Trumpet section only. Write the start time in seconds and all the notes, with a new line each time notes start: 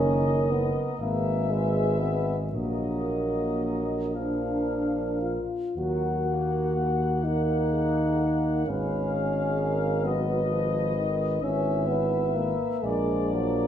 Already playing: D#5
1.02 E5
2.55 D#5
4.16 F5
5.81 F#5
8.68 F5
10.05 D#5
11.43 E5
12.85 D5